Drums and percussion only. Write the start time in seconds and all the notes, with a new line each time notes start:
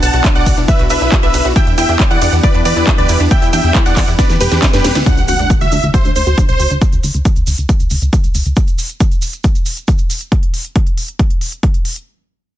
0.03 open hi-hat, ride, shaker
0.13 closed hi-hat, shaker
0.24 kick, clap, closed hi-hat, shaker
0.35 closed hi-hat
0.46 kick, open hi-hat, ride, shaker
0.57 closed hi-hat, shaker
0.68 kick, closed hi-hat, shaker
0.79 closed hi-hat
0.90 open hi-hat, ride, shaker
1.01 closed hi-hat, shaker
1.12 kick, clap, closed hi-hat, shaker
1.23 closed hi-hat
1.34 open hi-hat, ride, shaker
1.45 closed hi-hat, shaker
1.56 kick, closed hi-hat, shaker
1.67 closed hi-hat
1.78 open hi-hat, ride, shaker
1.89 closed hi-hat, shaker
2.00 kick, clap, closed hi-hat, shaker
2.11 closed hi-hat
2.22 open hi-hat, ride, shaker
2.33 closed hi-hat, shaker
2.43 kick, closed hi-hat, shaker
2.54 closed hi-hat
2.65 open hi-hat, ride, shaker
2.76 closed hi-hat, shaker
2.87 kick, clap, closed hi-hat, shaker
2.98 closed hi-hat
3.09 open hi-hat, ride, shaker
3.20 closed hi-hat, shaker
3.31 kick, closed hi-hat, shaker
3.42 closed hi-hat, shaker
3.53 open hi-hat, ride, shaker
3.63 closed hi-hat, shaker
3.75 kick, clap, closed hi-hat, shaker
3.86 closed hi-hat, shaker
3.97 kick, clap, open hi-hat, ride, shaker
4.08 closed hi-hat, shaker
4.19 kick, snare, closed hi-hat, shaker
4.30 snare, closed hi-hat, shaker
4.41 open hi-hat, ride, shaker
4.51 snare, closed hi-hat, shaker
4.62 kick, snare, clap, closed hi-hat, shaker
4.73 snare, closed hi-hat, shaker
4.84 snare, open hi-hat, ride, shaker
4.95 snare, closed hi-hat, shaker
5.06 kick, closed hi-hat, shaker
5.17 closed hi-hat, shaker
5.28 open hi-hat, shaker
5.39 closed hi-hat, shaker
5.50 kick, closed hi-hat, shaker
5.61 closed hi-hat, shaker
5.72 open hi-hat, shaker
5.83 closed hi-hat, shaker
5.94 kick, closed hi-hat, shaker
6.05 closed hi-hat, shaker
6.16 open hi-hat, shaker
6.27 closed hi-hat, shaker
6.38 kick, closed hi-hat, shaker
6.48 closed hi-hat, shaker
6.60 open hi-hat, shaker
6.71 closed hi-hat, shaker
6.81 kick, closed hi-hat, shaker
6.92 closed hi-hat, shaker
7.03 open hi-hat, shaker
7.14 closed hi-hat, shaker
7.25 kick, closed hi-hat, shaker
7.36 closed hi-hat, shaker
7.47 open hi-hat, shaker
7.58 closed hi-hat, shaker
7.69 kick, closed hi-hat, shaker
7.80 closed hi-hat, shaker
7.90 open hi-hat, shaker
8.02 closed hi-hat, shaker
8.13 kick, closed hi-hat, shaker
8.24 closed hi-hat, shaker
8.35 open hi-hat, shaker
8.46 closed hi-hat, shaker
8.56 kick, closed hi-hat, shaker
8.68 closed hi-hat, shaker
8.78 open hi-hat, shaker
8.89 closed hi-hat, shaker
9.00 kick, closed hi-hat, shaker
9.11 closed hi-hat, shaker
9.22 open hi-hat, shaker
9.33 closed hi-hat, shaker
9.44 kick, closed hi-hat, shaker
9.55 closed hi-hat, shaker
9.66 open hi-hat, shaker
9.77 closed hi-hat, shaker
9.88 kick, closed hi-hat, shaker
9.98 closed hi-hat, shaker
10.10 open hi-hat, shaker
10.21 closed hi-hat, shaker
10.32 kick, closed hi-hat
10.43 closed hi-hat
10.54 open hi-hat
10.65 closed hi-hat
10.76 kick, closed hi-hat
10.87 closed hi-hat
10.98 open hi-hat
11.08 closed hi-hat
11.19 kick, closed hi-hat
11.30 closed hi-hat
11.41 open hi-hat
11.52 closed hi-hat
11.63 kick, closed hi-hat
11.74 closed hi-hat
11.85 open hi-hat
11.96 closed hi-hat